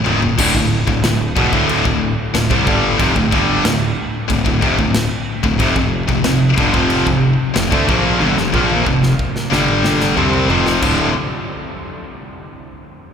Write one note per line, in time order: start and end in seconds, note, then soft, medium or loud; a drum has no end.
0.04 0.33 D#1 loud
0.04 0.19 D#2 loud
0.04 0.19 A#2 medium
0.04 0.20 D#3 loud
0.04 0.39 D#3 medium
0.04 0.39 A#3 medium
0.04 0.38 F4 medium
0.04 mid tom loud
0.22 0.37 D#2 medium
0.22 0.38 A#2 medium
0.22 floor tom loud
0.38 0.53 D1 loud
0.38 0.53 D2 loud
0.38 0.53 A2 loud
0.38 5.57 D3 medium
0.38 5.57 A3 medium
0.38 5.57 E4 medium
0.38 kick loud
0.38 crash loud
0.38 crash medium
0.54 0.85 D1 medium
0.54 0.80 D2 medium
0.54 0.80 A2 medium
0.54 kick loud
0.87 1.02 D1 medium
0.87 1.03 D2 medium
0.87 1.03 A2 medium
0.87 kick loud
1.03 1.33 D1 medium
1.03 1.30 D2 medium
1.03 1.30 A2 medium
1.03 snare loud
1.03 crash medium
1.36 1.51 E1 loud
1.36 1.51 E2 medium
1.36 1.51 B2 loud
1.36 kick loud
1.52 1.82 D1 medium
1.52 1.84 D2 medium
1.52 1.84 A2 loud
1.52 1.84 D3 loud
1.52 kick loud
1.69 crash medium
1.85 2.15 D1 medium
1.85 2.11 D2 medium
1.85 2.11 A2 medium
1.85 kick medium
2.34 2.49 D1 medium
2.34 2.50 D2 medium
2.34 2.50 A2 medium
2.34 snare loud
2.34 crash medium
2.50 2.65 C2 medium
2.50 2.65 C3 loud
2.50 2.66 G3 loud
2.50 kick loud
2.66 2.97 G1 loud
2.66 2.98 G2 medium
2.66 2.98 D3 loud
2.66 2.98 G3 loud
2.66 kick loud
2.98 3.14 F1 loud
2.98 3.14 F2 loud
2.98 3.14 C3 loud
2.98 kick loud
2.98 crash medium
3.15 3.31 D1 medium
3.15 3.31 D2 medium
3.15 3.31 A2 medium
3.15 kick loud
3.31 3.62 G1 loud
3.31 3.63 G2 medium
3.31 3.63 D3 loud
3.31 3.63 G3 loud
3.31 kick loud
3.64 3.94 D1 medium
3.64 3.90 D2 medium
3.64 3.90 A2 medium
3.64 snare loud
3.64 crash medium
4.28 4.45 D1 medium
4.28 4.43 D2 medium
4.28 4.44 A2 medium
4.28 kick medium
4.28 crash medium
4.45 4.61 D1 medium
4.45 4.61 D2 medium
4.45 4.61 A2 medium
4.45 kick medium
4.61 4.77 F1 loud
4.61 4.77 F2 loud
4.61 4.77 C3 loud
4.61 kick loud
4.78 5.09 D1 medium
4.78 5.05 D2 medium
4.78 5.05 A2 medium
4.78 kick medium
4.94 snare loud
4.94 crash medium
5.43 5.59 D1 medium
5.43 5.58 D2 medium
5.43 5.59 A2 medium
5.43 kick loud
5.59 5.75 F1 loud
5.59 5.75 F2 loud
5.59 5.75 C3 loud
5.59 9.48 F3 medium
5.59 9.48 C4 medium
5.59 9.47 G4 medium
5.59 kick loud
5.59 crash medium
5.75 6.06 F1 medium
5.75 6.02 F2 medium
5.75 6.02 C3 medium
5.75 kick loud
6.08 6.24 F1 medium
6.08 6.23 F2 medium
6.08 6.24 C3 medium
6.08 kick loud
6.24 6.56 F1 medium
6.24 6.51 F2 medium
6.24 6.51 C3 medium
6.24 snare loud
6.24 crash medium
6.56 6.73 G1 loud
6.56 6.72 G2 loud
6.56 6.73 D3 loud
6.56 kick loud
6.73 7.04 F1 medium
6.73 7.04 F2 medium
6.73 7.04 C3 medium
6.73 7.06 F3 loud
6.73 kick loud
6.90 crash medium
7.06 7.37 F1 medium
7.06 7.32 F2 medium
7.06 7.32 C3 medium
7.06 kick medium
7.10 7.35 C3 medium
7.54 7.71 F1 medium
7.54 7.71 F2 medium
7.54 7.70 C3 medium
7.54 snare loud
7.54 crash medium
7.58 7.73 F2 medium
7.58 7.73 C3 medium
7.70 7.87 D2 medium
7.70 7.87 D3 medium
7.70 7.87 A3 loud
7.70 kick loud
7.86 8.19 A#1 loud
7.86 8.19 A#2 medium
7.86 8.19 F3 loud
7.86 8.20 A#3 loud
7.86 kick loud
8.19 8.36 G1 loud
8.19 8.35 G2 loud
8.19 8.36 D3 loud
8.19 high tom medium
8.36 8.52 F1 medium
8.36 8.52 F2 medium
8.36 8.53 C3 medium
8.36 snare medium
8.52 8.84 A#1 medium
8.52 8.84 A#2 medium
8.52 8.85 F3 loud
8.52 8.85 A#3 loud
8.52 kick medium
8.70 high tom medium
8.84 9.17 F1 medium
8.84 9.12 F2 medium
8.84 9.12 C3 medium
8.84 kick medium
9.03 snare medium
9.19 kick medium
9.36 snare medium
9.50 10.13 G1 medium
9.50 10.15 G2 medium
9.50 10.16 D3 loud
9.50 10.15 G3 loud
9.50 10.16 G3 medium
9.50 10.16 D4 medium
9.50 10.16 A4 medium
9.50 snare medium
9.68 mid tom medium
9.84 snare loud
10.00 snare medium
10.15 10.47 C2 loud
10.15 10.48 C3 medium
10.15 10.80 F3 medium
10.15 10.48 G3 medium
10.15 10.80 C4 medium
10.15 10.49 C4 loud
10.15 10.81 G4 medium
10.15 floor tom loud
10.34 floor tom medium
10.48 10.79 F1 loud
10.48 10.81 F2 loud
10.48 10.81 C3 loud
10.48 10.82 F3 loud
10.48 floor tom loud
10.66 snare medium
10.81 11.12 D1 medium
10.81 11.08 D2 medium
10.81 11.09 A2 loud
10.81 11.12 D3 medium
10.81 11.09 D3 loud
10.81 11.12 A3 medium
10.81 11.13 E4 medium
10.81 kick loud
10.81 crash medium